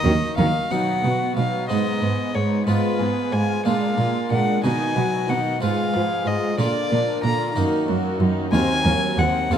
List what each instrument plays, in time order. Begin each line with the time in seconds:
Already playing: harpsichord A#3 D#4, violin section D#4 D#5, violin D#5
0.04 double bass section D#2, harpsichord D#3, cello section D#3, viola section F#3
0.37 double bass section D#2, harpsichord D#3, cello section D#3, viola section F#3, violin F5
0.71 harpsichord B2 B3 D#4, cello section B2, viola section F#3, violin section D#4 B4, violin F#5
1.03 cello section B2, harpsichord B2, viola section B3, violin section F#4
1.36 harpsichord B2, cello section B2, viola section F#3, violin section D#4 B4, violin F5
1.69 harpsichord G#2 G#3 B3 D#4, cello section G#2, viola section G#3, violin section D#4 B4, violin D#5
2.02 cello section G#2, harpsichord G#2, viola section B3, violin section B3 G#4
2.34 cello section G#2, harpsichord G#2, viola section G#3, violin section D#4 B4, violin C#5
2.66 harpsichord G#2 G#3 B3 F4, cello section G#2, viola section G#3, violin section F4 B4, violin B4
2.99 harpsichord G#2, cello section G#2, viola section B3, violin section G#4
3.32 harpsichord G#2, cello section G#2, viola section G#3, violin section F4 B4, violin G#5
3.65 harpsichord A#2 G#3 D4 F4, cello section A#2, viola section G#3, violin section D4 A#4, violin F5
3.98 harpsichord A#2, cello section A#2, viola section A#3, violin section F4 G#4
4.31 harpsichord A#2, cello section A#2, viola section G#3, violin section D4 A#4, violin F#5
4.63 harpsichord B2 D#4 B4, cello section B2, viola section D#3, violin section D#4 D#5, violin G#5
4.96 harpsichord B2, cello section B2, viola section F#3, violin section F#4 B4
5.28 harpsichord B2, cello section B2, viola section D#3, violin section D#4 D#5, violin F#5
5.61 harpsichord G#2 F4 B4, cello section G#2, viola section G#3, violin section F4 G#4, violin F5
5.93 harpsichord G#2, cello section G#2, viola section F3, violin section G#4 B4
6.26 harpsichord G#2, cello section G#2, viola section G#3, violin section F4 G#4, violin D#5
6.58 harpsichord A#2 A#3 F4 A#4, cello section A#2, viola section D3, violin section F4 D5, violin D5
6.90 harpsichord A#2, cello section A#2, viola section F3, violin section D4 A#4
7.23 harpsichord A#2, cello section A#2, viola section D3, violin section F4 D5, violin A#5
7.55 harpsichord F#2 A#3 D#4 A#4, cello section F#2, viola section D#3, violin section D#4 F#4
7.88 cello section F#2, harpsichord F#2, viola section F#3, violin section F#4 A#4
8.20 cello section F#2, harpsichord F#2, viola section D#3, violin section D#4 F#4
8.52 cello section D#2, harpsichord D#2 C4 F#4 A#4, viola section D#3, violin section C4 C5, violin G#5
8.85 cello section D#2, harpsichord D#2, viola section F#3, violin section A#3 A#4
9.18 cello section D#2, harpsichord D#2, viola section D#3, violin section C4 C5, violin F#5
9.50 cello section D#2, harpsichord D#2 C4 F4 A4, viola section D#3, violin section C4 C5, violin F5